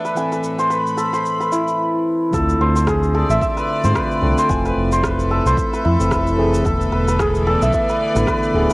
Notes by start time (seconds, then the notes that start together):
Already playing: E3 A3 B3 D4 E4 A4 E5
0.05 B4, shaker
0.15 A2 E3 C4 A4 G#5, shaker
0.26 A3
0.32 B4, shaker
0.44 shaker
0.59 C5, shaker
0.70 B4, shaker
0.75 B5
0.87 shaker
0.97 A4, shaker
1.13 C5, shaker
1.26 shaker
1.40 B4, shaker
1.52 E4, shaker
1.68 shaker
2.31 D2 D3 A3 C4 F4 A4, kick, shaker
2.49 shaker
2.60 D2 C5
2.76 C5, shaker
2.87 G#4, kick, cross-stick, shaker
3.03 shaker
3.14 A4 D5
3.29 A1 E5, shaker
3.41 E5, kick, shaker
3.57 B4, shaker
3.83 G#2 D3 A3 C4 F4 C5, shaker
3.95 B4, kick, cross-stick, shaker
4.11 shaker
4.21 C2 D3 A3 C4 A4
4.38 C5, shaker
4.48 F1 A3 C4 E4 F4 G#5, kick, shaker
4.65 B4, shaker
4.77 F1
4.92 C5, shaker
5.04 A4 B4, kick, cross-stick, shaker
5.19 E5, shaker
5.31 A4
5.46 C2 C5, shaker
5.57 kick, shaker
5.73 B4, shaker
5.85 F2 E4
5.99 F1 E3 A3 C4, shaker
6.11 B4, kick, cross-stick, shaker
6.27 shaker
6.37 E3 A3 C4 G#4
6.54 shaker
6.63 E1 D3 E3 A3 B3 E4 A4, kick, shaker
6.75 B3
6.81 shaker
6.92 E1 B4
7.08 B4, shaker
7.19 G#4, kick, cross-stick, shaker
7.35 shaker
7.40 D5
7.47 A4
7.61 B1 E5, shaker
7.73 E5, kick, shaker
7.89 B4, shaker
8.14 A1 D3 A3 B3 E4 B4, shaker
8.27 B4, kick, cross-stick, shaker
8.43 shaker
8.54 D1 D3 A3 B3 G#4
8.70 B4, shaker